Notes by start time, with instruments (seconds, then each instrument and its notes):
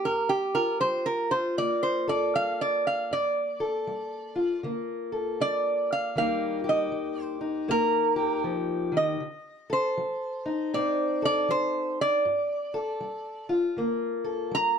Already playing: steel-string acoustic guitar A#3
0.05 steel-string acoustic guitar G2, resonator guitar played with a steel bar A#4
0.29 resonator guitar played with a steel bar G4
0.54 steel-string acoustic guitar F4, resonator guitar played with a steel bar A#4
0.81 steel-string acoustic guitar G3, resonator guitar played with a steel bar C5
1.06 resonator guitar played with a steel bar A#4
1.31 steel-string acoustic guitar F4, resonator guitar played with a steel bar C5
1.57 steel-string acoustic guitar D3 A#3, resonator guitar played with a steel bar D5
1.83 resonator guitar played with a steel bar C5
2.08 steel-string acoustic guitar A4, resonator guitar played with a steel bar D5
2.35 steel-string acoustic guitar G3, resonator guitar played with a steel bar F5
2.61 resonator guitar played with a steel bar D5
2.87 resonator guitar played with a steel bar F5
3.11 steel-string acoustic guitar G2, resonator guitar played with a steel bar D5
3.60 steel-string acoustic guitar A4
3.87 steel-string acoustic guitar G3
4.36 steel-string acoustic guitar F4
4.63 steel-string acoustic guitar D3 A#3
5.12 steel-string acoustic guitar A4
5.40 steel-string acoustic guitar G3, resonator guitar played with a steel bar D5
5.92 resonator guitar played with a steel bar F5
6.15 steel-string acoustic guitar D#3 G3 A#3 D#4 G4, resonator guitar played with a steel bar F5
6.64 steel-string acoustic guitar G4
6.69 resonator guitar played with a steel bar D#5
6.92 steel-string acoustic guitar G3
7.21 resonator guitar played with a steel bar C5
7.41 steel-string acoustic guitar D#4
7.68 steel-string acoustic guitar A#2 A#3, resonator guitar played with a steel bar A#4
8.16 steel-string acoustic guitar G4
8.44 steel-string acoustic guitar F3
8.92 steel-string acoustic guitar D#3
8.97 resonator guitar played with a steel bar D#5
9.20 steel-string acoustic guitar D3
9.70 steel-string acoustic guitar A4, resonator guitar played with a steel bar C5
9.97 steel-string acoustic guitar F#3
10.46 steel-string acoustic guitar D#4
10.73 steel-string acoustic guitar A2 C4, resonator guitar played with a steel bar D5
11.22 steel-string acoustic guitar A4, resonator guitar played with a steel bar D5
11.49 steel-string acoustic guitar F#3, resonator guitar played with a steel bar C5
12.01 resonator guitar played with a steel bar D5
12.25 steel-string acoustic guitar G2
12.74 steel-string acoustic guitar A4
13.00 steel-string acoustic guitar G3
13.49 steel-string acoustic guitar F4
13.77 steel-string acoustic guitar D3 A#3
14.24 steel-string acoustic guitar A4
14.51 steel-string acoustic guitar G3, resonator guitar played with a steel bar A#5